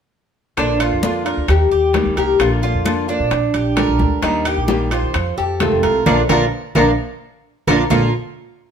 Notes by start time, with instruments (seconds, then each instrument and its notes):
0.57 upright bass A#1, nylon-string guitar D3 A#3 D4 F4, cuban tres D4, oud D4, high bongo, high conga, high timbale
0.80 nylon-string guitar A#3 D4 F4, cuban tres F4, oud F4, high conga, high timbale, claves
0.92 upright bass F2
1.02 nylon-string guitar D3 A#3 D4 F4, oud F4, high bongo, high conga
1.25 nylon-string guitar A#3 D4 F4, cuban tres A#4, high conga, high timbale
1.37 upright bass D2
1.48 upright bass D#2, oud G4, muted nylon-string guitar stroke, high bongo, high conga, high timbale, claves
1.71 upright bass D#2, cuban tres G4, high conga
1.93 nylon-string guitar D#3 G3 A#3 D#4 G4, high bongo, low bongo, high conga, high timbale
2.05 upright bass D#2
2.16 upright bass C2, nylon-string guitar A#3 D#4 G4, oud G4, cuban tres A#4, high timbale
2.39 upright bass A#1, nylon-string guitar D3 A#3 D4 F4, oud F4, high bongo, high conga, high timbale, claves
2.62 nylon-string guitar A#3 D4 F4, cuban tres F4, oud F4, high bongo, high conga
2.74 upright bass F2
2.84 nylon-string guitar D3 A#3 D4 F4, high bongo, high conga, high timbale, claves
3.08 nylon-string guitar A#3 D4 F4, cuban tres D4, oud D4, high bongo, high conga
3.20 upright bass A#2
3.30 upright bass A#1, muted nylon-string guitar stroke, high bongo, high conga, high timbale
3.54 upright bass A#1, cuban tres G4, high bongo, high conga, high timbale
3.76 nylon-string guitar D3 G3 D4 G4, cuban tres A#4, high bongo, low bongo, high conga, high timbale, low timbale, claves
3.88 upright bass A#1
3.99 upright bass D2, nylon-string guitar G3 D4 G4, high conga
4.22 upright bass D#2, nylon-string guitar D#3 G3 A#3 D#4 G4, cuban tres D#4, oud D#4, high bongo, high conga, high timbale
4.45 nylon-string guitar A#3 D#4 G4, cuban tres G4, oud G4, high conga, high timbale, claves
4.57 upright bass A#1
4.67 nylon-string guitar D#3 G3 A#3 D#4 G4, oud G4, high bongo, high conga
4.91 nylon-string guitar A#3 D#4 G4, oud F4, cuban tres C5, high conga, high timbale
5.03 upright bass D#3
5.14 upright bass F2, muted nylon-string guitar stroke, high bongo, high conga, high timbale, claves
5.37 upright bass F2, oud G4, cuban tres A4, high conga
5.60 nylon-string guitar C3 D#3 A3 C4 F4, oud A4, high bongo, low bongo, high conga, high timbale
5.72 upright bass F2
5.83 upright bass C2, nylon-string guitar A3 C4 F4, cuban tres A#4, high conga, high timbale
6.06 upright bass A#1, nylon-string guitar F3 A#3 D4, cuban tres D4 F4 A#4, oud D4 F4 A#4, low bongo, low conga, high timbale, claves
6.29 upright bass A#1, nylon-string guitar F3 A#3 D4, cuban tres D4 F4 A#4, oud D4 F4 A#4, low bongo, low conga, high timbale, claves
6.75 upright bass A#1, nylon-string guitar F3 A#3 D4, cuban tres D4 F4 A#4, oud D4 F4 A#4, low bongo, low conga, high timbale, claves
7.67 upright bass A#1, nylon-string guitar F3 A#3 D4, cuban tres D4 F4 A#4, oud D4 F4 A#4, low bongo, low conga, high timbale, claves
7.90 upright bass A#1, nylon-string guitar A#2 D3 A#3 D4 F4, cuban tres A#3 F4 A#4, low bongo, low conga, low timbale, claves